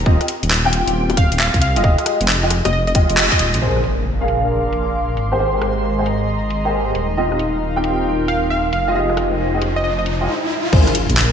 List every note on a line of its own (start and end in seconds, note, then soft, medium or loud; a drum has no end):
0.06 0.19 D#1 loud
0.06 0.24 C4 medium
0.06 0.24 F4 medium
0.06 0.24 G4 medium
0.06 0.24 D#5 loud
0.06 kick loud
0.21 cross-stick soft
0.21 closed hi-hat medium
0.28 closed hi-hat loud
0.43 0.84 D#1 loud
0.43 closed hi-hat medium
0.51 clap loud
0.65 1.61 C4 medium
0.65 1.61 F4 medium
0.65 1.61 G4 medium
0.65 1.61 G5 loud
0.73 closed hi-hat loud
0.87 1.28 D#1 medium
0.87 closed hi-hat medium
1.10 closed hi-hat soft
1.10 high bongo medium
1.17 1.35 F5 medium
1.17 kick loud
1.17 closed hi-hat loud
1.32 1.50 D#1 loud
1.32 closed hi-hat medium
1.39 1.57 F5 medium
1.39 clap loud
1.54 1.78 C2 medium
1.54 kick medium
1.54 closed hi-hat medium
1.62 2.06 F5 loud
1.62 closed hi-hat loud
1.76 1.83 F1 loud
1.76 1.82 G#3 loud
1.76 1.82 F4 medium
1.76 1.82 G4 medium
1.76 1.82 D#5 loud
1.76 closed hi-hat medium
1.84 1.96 F1 loud
1.84 2.40 G#3 medium
1.84 2.40 F4 medium
1.84 2.40 G4 medium
1.84 2.40 D#5 loud
1.84 kick loud
1.98 cross-stick soft
1.98 closed hi-hat medium
2.06 cross-stick medium
2.06 closed hi-hat loud
2.21 2.62 F1 loud
2.21 closed hi-hat medium
2.28 clap loud
2.43 2.50 G#3 medium
2.43 2.50 F4 medium
2.43 2.50 G4 medium
2.43 2.50 D#5 medium
2.50 cross-stick medium
2.50 closed hi-hat loud
2.65 3.06 F1 loud
2.65 2.71 D#5 medium
2.65 closed hi-hat medium
2.65 high bongo medium
2.73 2.82 D#5 medium
2.87 2.92 D#5 medium
2.87 closed hi-hat soft
2.95 3.60 G#3 loud
2.95 3.60 F4 medium
2.95 3.60 G4 medium
2.95 3.60 D#5 loud
2.95 kick loud
2.95 closed hi-hat loud
3.10 3.17 F1 loud
3.10 closed hi-hat medium
3.17 3.30 F1 medium
3.17 clap loud
3.32 3.62 D#5 medium
3.32 kick medium
3.32 closed hi-hat medium
3.39 3.56 D#1 loud
3.39 closed hi-hat loud
3.54 3.60 C2 loud
3.54 closed hi-hat medium
3.62 5.16 A#1 medium
3.62 3.79 A#3 medium
3.62 3.79 D4 medium
3.62 3.79 G#4 medium
3.62 5.90 A#4 medium
3.62 3.79 C5 medium
3.62 impact medium
3.76 cross-stick soft
3.84 closed hi-hat loud
3.93 5.90 F5 medium
4.09 7.67 C6 medium
4.21 5.16 A#3 medium
4.21 5.16 D4 medium
4.21 5.16 G#4 medium
4.21 5.16 F5 medium
4.21 5.90 D6 medium
4.28 closed hi-hat loud
4.73 closed hi-hat medium
5.17 6.93 G#1 medium
5.17 6.95 G#3 medium
5.17 closed hi-hat loud
5.32 5.38 A#3 medium
5.32 5.38 G4 medium
5.32 5.38 G#4 medium
5.32 5.38 C5 medium
5.38 5.95 A#3 medium
5.38 5.95 G4 medium
5.38 5.95 G#4 medium
5.38 5.95 C5 medium
5.38 7.68 A#5 medium
5.46 7.67 D#5 medium
5.62 cross-stick soft
5.62 closed hi-hat loud
5.99 6.05 A#3 medium
5.99 6.05 G4 medium
5.99 6.05 G#4 medium
5.99 6.05 C5 medium
6.06 closed hi-hat medium
6.50 closed hi-hat medium
6.65 6.94 A#3 medium
6.65 6.94 G4 medium
6.65 6.94 G#4 medium
6.65 6.94 C5 medium
6.95 8.71 D#1 medium
6.95 9.56 D#4 medium
6.95 closed hi-hat loud
7.11 9.30 F5 medium
7.17 7.35 C4 medium
7.17 7.35 F4 medium
7.17 7.35 G4 medium
7.17 7.35 D#5 medium
7.17 riser medium
7.27 9.56 A#4 medium
7.32 cross-stick soft
7.39 closed hi-hat medium
7.76 8.72 C4 medium
7.76 8.72 F4 medium
7.76 8.72 G4 medium
7.76 8.73 G5 medium
7.76 8.72 G5 medium
7.84 closed hi-hat medium
8.28 8.46 F5 medium
8.28 closed hi-hat medium
8.50 8.68 F5 medium
8.73 10.28 F1 medium
8.73 10.28 F4 medium
8.73 9.17 F5 medium
8.73 closed hi-hat loud
8.88 8.93 G#3 medium
8.88 8.93 F4 medium
8.88 8.93 G4 medium
8.88 8.93 D#5 loud
8.95 9.51 G#3 medium
8.95 9.51 F4 medium
8.95 9.51 G4 medium
8.95 9.51 D#5 loud
9.10 10.28 C5 medium
9.10 cross-stick soft
9.17 cross-stick soft
9.17 closed hi-hat medium
9.54 9.61 G#3 medium
9.54 9.61 F4 medium
9.54 9.61 G4 medium
9.54 9.61 D#5 medium
9.62 closed hi-hat medium
9.76 9.82 D#5 medium
9.84 9.93 D#5 medium
9.99 10.03 D#5 medium
10.06 closed hi-hat medium
10.21 10.28 G#3 medium
10.21 10.28 F4 medium
10.21 10.28 G4 medium
10.21 10.28 D#5 loud
10.73 10.85 A#1 loud
10.73 10.91 A#3 medium
10.73 10.91 D4 medium
10.73 10.91 G#4 medium
10.73 11.32 A#4 medium
10.73 10.91 C5 loud
10.73 kick loud
10.73 crash loud
10.73 impact medium
10.87 cross-stick soft
10.87 closed hi-hat medium
10.95 closed hi-hat loud
11.07 11.32 A#1 loud
11.07 11.32 F5 medium
11.07 closed hi-hat medium
11.17 11.32 C6 medium
11.17 clap loud